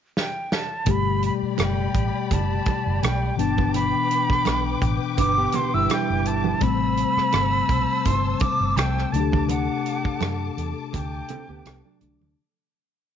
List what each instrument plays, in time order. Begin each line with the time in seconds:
0.17 flute G5, snare
0.52 flute A5, snare
0.85 fingered electric bass G1, tine electric piano B2 G3 A3 G4, violin section G4 D5 B5, kick, closed hi-hat, muted conga
0.91 flute B5
1.23 flute B5, closed hi-hat
1.42 muted fingered electric bass stroke
1.58 fingered electric bass F#1, cross-stick, closed hi-hat, high conga
1.62 flute G5
1.95 fingered electric bass A1, kick, closed hi-hat
2.31 fingered electric bass F#1, flute A5, kick, closed hi-hat, muted conga, low conga
2.66 kick, closed hi-hat, muted conga
2.87 fingered electric bass F#1
3.03 fingered electric bass B1, flute G5, cross-stick, closed hi-hat, high conga
3.36 fingered electric bass G1, tine electric piano B2 E3 B3 D4, violin section B4 G5 D6, flute A5, closed hi-hat
3.58 kick, high conga
3.74 flute B5, closed hi-hat, muted conga
4.11 closed hi-hat
4.30 muted fingered electric bass stroke, kick, cross-stick
4.45 fingered electric bass B1, cross-stick, closed hi-hat, high conga
4.82 fingered electric bass A1, kick, closed hi-hat
5.17 fingered electric bass G1, clean electric guitar D4 B4, flute D6, kick, closed hi-hat, muted conga, low conga
5.38 clean electric guitar B3 G4
5.52 flute C6, closed hi-hat, muted conga, low conga
5.74 fingered electric bass G1, clean electric guitar G3 E4, flute E6
5.89 flute G5, cross-stick, closed hi-hat, high conga
6.10 fingered electric bass F#1
6.26 fingered electric bass G1, flute A5, closed hi-hat
6.44 high conga
6.60 fingered electric bass A1, tine electric piano C3 G3 A3 C4, violin section C5 A5 E6, flute B5, kick, closed hi-hat, muted conga
6.97 closed hi-hat
7.17 muted fingered electric bass stroke, cross-stick
7.32 fingered electric bass G1, cross-stick, closed hi-hat, high conga
7.69 fingered electric bass B1, kick, closed hi-hat
8.05 fingered electric bass G1, flute C6, kick, closed hi-hat, low conga
8.40 flute D6, kick, closed hi-hat, muted conga
8.60 fingered electric bass G1
8.77 fingered electric bass C2, flute G5, cross-stick, closed hi-hat, high conga
8.98 cross-stick
9.12 fingered electric bass D2, tine electric piano C3 F#3 A3 D4, violin section A4 A5 D6, flute A5, closed hi-hat
9.20 tine electric piano G4
9.32 kick, high conga
9.49 flute F#5, closed hi-hat, muted conga
9.86 closed hi-hat
10.05 muted fingered electric bass stroke, kick
10.21 fingered electric bass F#2, cross-stick, closed hi-hat, high conga
10.57 fingered electric bass E2, closed hi-hat
10.93 fingered electric bass D2, flute G5, kick, closed hi-hat, muted conga, low conga
11.28 clean electric guitar C4 A4, closed hi-hat, muted conga, low conga
11.49 fingered electric bass D2, clean electric guitar B3 G4
11.66 fingered electric bass C2, cross-stick, closed hi-hat, high conga
11.85 clean electric guitar F#3 D4
12.00 fingered electric bass C2, tine electric piano C3 D3 A3 D4, closed hi-hat
12.21 fingered electric bass D2, high conga